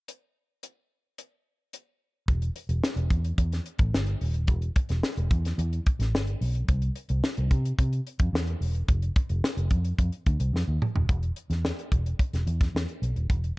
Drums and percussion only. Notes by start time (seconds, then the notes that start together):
0.08 closed hi-hat
0.63 closed hi-hat
1.18 closed hi-hat
1.73 closed hi-hat
2.28 kick, closed hi-hat
2.42 closed hi-hat
2.56 closed hi-hat
2.69 closed hi-hat
2.84 snare
2.97 closed hi-hat
3.10 kick, closed hi-hat
3.24 closed hi-hat
3.38 kick, closed hi-hat
3.52 snare, closed hi-hat
3.66 closed hi-hat
3.79 kick, closed hi-hat
3.94 snare
4.07 closed hi-hat
4.21 open hi-hat
4.34 closed hi-hat
4.47 kick, closed hi-hat
4.62 closed hi-hat
4.76 kick, closed hi-hat
4.89 snare, closed hi-hat
5.03 snare
5.17 closed hi-hat
5.31 kick, closed hi-hat
5.45 snare, closed hi-hat
5.59 closed hi-hat
5.73 closed hi-hat
5.86 kick, closed hi-hat
6.00 snare, closed hi-hat
6.15 snare
6.27 closed hi-hat
6.42 open hi-hat
6.55 closed hi-hat
6.68 kick, closed hi-hat
6.82 closed hi-hat
6.96 closed hi-hat
7.09 closed hi-hat
7.24 snare
7.37 closed hi-hat
7.51 kick, closed hi-hat
7.65 closed hi-hat
7.79 kick, closed hi-hat
7.93 closed hi-hat
8.07 closed hi-hat
8.19 kick, closed hi-hat
8.35 snare
8.47 closed hi-hat
8.62 open hi-hat
8.75 closed hi-hat
8.88 kick, closed hi-hat
9.02 closed hi-hat
9.16 kick, closed hi-hat
9.29 closed hi-hat
9.44 snare
9.57 closed hi-hat
9.70 kick, closed hi-hat
9.85 closed hi-hat
9.99 kick, closed hi-hat
10.12 closed hi-hat
10.26 kick, closed hi-hat
10.40 closed hi-hat
10.56 snare
10.82 mid tom
10.96 floor tom
11.09 kick, closed hi-hat
11.23 closed hi-hat
11.36 closed hi-hat
11.50 snare, closed hi-hat
11.65 snare
11.79 closed hi-hat
11.92 kick, closed hi-hat
12.06 closed hi-hat
12.19 kick, closed hi-hat
12.33 snare, closed hi-hat
12.47 closed hi-hat
12.61 kick, snare, closed hi-hat
12.76 snare
12.88 closed hi-hat
13.03 closed hi-hat
13.16 closed hi-hat
13.30 kick, closed hi-hat
13.44 closed hi-hat